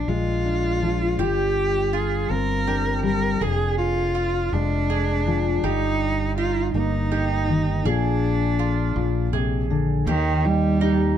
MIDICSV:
0, 0, Header, 1, 5, 480
1, 0, Start_track
1, 0, Key_signature, -3, "major"
1, 0, Tempo, 739827
1, 774, Time_signature, 6, 3, 24, 8
1, 7252, End_track
2, 0, Start_track
2, 0, Title_t, "Mandolin"
2, 0, Program_c, 0, 25
2, 772, Note_on_c, 0, 67, 82
2, 1244, Note_off_c, 0, 67, 0
2, 1253, Note_on_c, 0, 65, 68
2, 1725, Note_off_c, 0, 65, 0
2, 1734, Note_on_c, 0, 67, 67
2, 2206, Note_off_c, 0, 67, 0
2, 2215, Note_on_c, 0, 68, 81
2, 2686, Note_off_c, 0, 68, 0
2, 2691, Note_on_c, 0, 65, 72
2, 3165, Note_off_c, 0, 65, 0
2, 3178, Note_on_c, 0, 68, 72
2, 3648, Note_off_c, 0, 68, 0
2, 3657, Note_on_c, 0, 67, 80
2, 4128, Note_off_c, 0, 67, 0
2, 4138, Note_on_c, 0, 63, 74
2, 4608, Note_off_c, 0, 63, 0
2, 4617, Note_on_c, 0, 67, 71
2, 5087, Note_off_c, 0, 67, 0
2, 5096, Note_on_c, 0, 68, 80
2, 5566, Note_off_c, 0, 68, 0
2, 5574, Note_on_c, 0, 65, 73
2, 6045, Note_off_c, 0, 65, 0
2, 6054, Note_on_c, 0, 68, 73
2, 6524, Note_off_c, 0, 68, 0
2, 6535, Note_on_c, 0, 67, 83
2, 7005, Note_off_c, 0, 67, 0
2, 7014, Note_on_c, 0, 63, 82
2, 7252, Note_off_c, 0, 63, 0
2, 7252, End_track
3, 0, Start_track
3, 0, Title_t, "Cello"
3, 0, Program_c, 1, 42
3, 53, Note_on_c, 1, 65, 98
3, 771, Note_on_c, 1, 67, 103
3, 781, Note_off_c, 1, 65, 0
3, 1252, Note_on_c, 1, 68, 82
3, 1262, Note_off_c, 1, 67, 0
3, 1496, Note_on_c, 1, 70, 95
3, 1505, Note_off_c, 1, 68, 0
3, 1976, Note_off_c, 1, 70, 0
3, 1980, Note_on_c, 1, 70, 92
3, 2218, Note_on_c, 1, 68, 99
3, 2228, Note_off_c, 1, 70, 0
3, 2447, Note_off_c, 1, 68, 0
3, 2451, Note_on_c, 1, 65, 99
3, 2938, Note_on_c, 1, 62, 99
3, 2947, Note_off_c, 1, 65, 0
3, 3659, Note_on_c, 1, 63, 101
3, 3668, Note_off_c, 1, 62, 0
3, 4133, Note_off_c, 1, 63, 0
3, 4137, Note_on_c, 1, 65, 84
3, 4360, Note_off_c, 1, 65, 0
3, 4388, Note_on_c, 1, 63, 91
3, 5100, Note_on_c, 1, 62, 95
3, 5110, Note_off_c, 1, 63, 0
3, 6297, Note_off_c, 1, 62, 0
3, 6533, Note_on_c, 1, 51, 93
3, 6779, Note_on_c, 1, 55, 97
3, 6789, Note_off_c, 1, 51, 0
3, 7252, Note_off_c, 1, 55, 0
3, 7252, End_track
4, 0, Start_track
4, 0, Title_t, "Steel-string acoustic guitar"
4, 0, Program_c, 2, 25
4, 0, Note_on_c, 2, 46, 69
4, 0, Note_on_c, 2, 62, 53
4, 56, Note_on_c, 2, 56, 57
4, 293, Note_off_c, 2, 62, 0
4, 295, Note_on_c, 2, 62, 53
4, 533, Note_on_c, 2, 53, 58
4, 774, Note_on_c, 2, 43, 66
4, 775, Note_off_c, 2, 56, 0
4, 776, Note_off_c, 2, 46, 0
4, 778, Note_on_c, 2, 65, 64
4, 793, Note_off_c, 2, 53, 0
4, 1498, Note_on_c, 2, 60, 57
4, 1518, Note_off_c, 2, 62, 0
4, 1737, Note_on_c, 2, 62, 53
4, 1968, Note_on_c, 2, 55, 58
4, 2183, Note_off_c, 2, 55, 0
4, 2187, Note_off_c, 2, 43, 0
4, 2189, Note_off_c, 2, 60, 0
4, 2189, Note_off_c, 2, 65, 0
4, 2211, Note_on_c, 2, 41, 71
4, 2212, Note_off_c, 2, 62, 0
4, 2214, Note_on_c, 2, 62, 55
4, 2942, Note_on_c, 2, 56, 60
4, 3178, Note_off_c, 2, 62, 0
4, 3181, Note_on_c, 2, 62, 57
4, 3418, Note_on_c, 2, 53, 65
4, 3626, Note_off_c, 2, 41, 0
4, 3629, Note_off_c, 2, 53, 0
4, 3654, Note_on_c, 2, 43, 69
4, 3657, Note_on_c, 2, 67, 69
4, 3659, Note_off_c, 2, 56, 0
4, 4381, Note_on_c, 2, 58, 61
4, 4616, Note_off_c, 2, 62, 0
4, 4618, Note_on_c, 2, 63, 58
4, 4853, Note_on_c, 2, 51, 62
4, 5066, Note_off_c, 2, 43, 0
4, 5068, Note_off_c, 2, 67, 0
4, 5069, Note_off_c, 2, 63, 0
4, 5095, Note_off_c, 2, 51, 0
4, 5097, Note_on_c, 2, 46, 72
4, 5099, Note_on_c, 2, 68, 69
4, 5119, Note_off_c, 2, 58, 0
4, 5804, Note_off_c, 2, 46, 0
4, 5812, Note_on_c, 2, 46, 62
4, 6050, Note_off_c, 2, 46, 0
4, 6053, Note_on_c, 2, 48, 64
4, 6294, Note_off_c, 2, 48, 0
4, 6296, Note_on_c, 2, 50, 68
4, 6507, Note_off_c, 2, 68, 0
4, 6535, Note_off_c, 2, 50, 0
4, 6538, Note_on_c, 2, 39, 77
4, 6778, Note_on_c, 2, 63, 65
4, 7018, Note_on_c, 2, 67, 72
4, 7245, Note_off_c, 2, 39, 0
4, 7252, Note_off_c, 2, 63, 0
4, 7252, Note_off_c, 2, 67, 0
4, 7252, End_track
5, 0, Start_track
5, 0, Title_t, "Fingered electric bass"
5, 0, Program_c, 3, 33
5, 51, Note_on_c, 3, 34, 77
5, 747, Note_off_c, 3, 34, 0
5, 770, Note_on_c, 3, 31, 75
5, 1467, Note_off_c, 3, 31, 0
5, 1491, Note_on_c, 3, 31, 82
5, 2188, Note_off_c, 3, 31, 0
5, 2212, Note_on_c, 3, 29, 78
5, 2909, Note_off_c, 3, 29, 0
5, 2936, Note_on_c, 3, 29, 84
5, 3631, Note_off_c, 3, 29, 0
5, 3655, Note_on_c, 3, 31, 81
5, 4350, Note_off_c, 3, 31, 0
5, 4374, Note_on_c, 3, 31, 90
5, 5069, Note_off_c, 3, 31, 0
5, 5095, Note_on_c, 3, 34, 92
5, 5789, Note_off_c, 3, 34, 0
5, 5812, Note_on_c, 3, 34, 93
5, 6507, Note_off_c, 3, 34, 0
5, 6532, Note_on_c, 3, 39, 101
5, 7226, Note_off_c, 3, 39, 0
5, 7252, End_track
0, 0, End_of_file